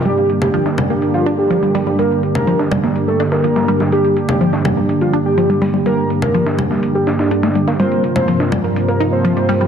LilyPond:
<<
  \new Staff \with { instrumentName = "Analog synth lead" } { \time 4/4 \key g \minor \tempo 4 = 124 g'8 r16 g'8 r4 f'16 r16 g'4 r16 | bes'8 r16 bes'8 r4 a'16 r16 bes'4 r16 | g'8 r16 g'8 r4 f'16 r16 g'4 r16 | bes'8 r16 bes'8 r4 g'16 r16 d'4 r16 |
c''8 r16 c''8 r4 bes'16 r16 c''4 r16 | }
  \new Staff \with { instrumentName = "Analog polysynth" } { \time 4/4 \key g \minor <g d' g'>1~ | <g d' g'>1 | <g d' g'>1~ | <g d' g'>1 |
<g, bes f' bes'>1 | }
  \new Staff \with { instrumentName = "Synth arpeggio sound" } { \clef bass \time 4/4 \key g \minor g16 r8. f16 d'16 g16 bes16 r8 d'16 r16 f16 g16 g16 g16 | g16 r8. f16 d'16 g16 bes16 r8 d'16 r16 f16 g16 g16 g16 | g16 r8. f16 d'16 g16 bes16 r8 d'16 r16 f16 g16 g16 g16 | g16 r8. f16 d'16 g16 bes16 r8 d'16 r16 d'16 a16 g16 bes16 |
g16 r8. f16 d'16 g16 bes16 r8 ees'16 r16 f16 g16 g16 g16 | }
  \new Staff \with { instrumentName = "Analog synth pad" } { \clef bass \time 4/4 \key g \minor << { bes1~ | bes1~ | bes1~ | bes1~ |
bes1 | } \\ { <g, d>1~ | <g, d>1~ | <g, d>1~ | <g, d>1 |
<c f>1 | } >> }
  \new DrumStaff \with { instrumentName = "Drums" } \drummode { \time 4/4 hh16 hh16 hh16 cgl16 hh16 sn16 cgl16 hh16 hh16 hh16 hh8 hh16 hh16 hho8 | hh8 hh16 cgl16 hh16 sn16 cgl16 sn16 hh8 <hh sn>16 sn16 hh16 sn16 hh16 sn16 | hh16 hh16 hh16 cgl16 hh16 sn16 cgl16 hh16 hh16 hh16 hh8 hh16 hh16 hho8 | hh8 hh16 cgl16 hh16 sn16 cgl16 sn16 hh8 <hh sn>16 sn16 hh16 sn16 hh16 sn16 |
hh16 hh16 hh16 cgl16 hh16 sn16 <cgl hh>16 hh16 hh16 hh16 hh8 hh16 hh16 hho8 | }
>>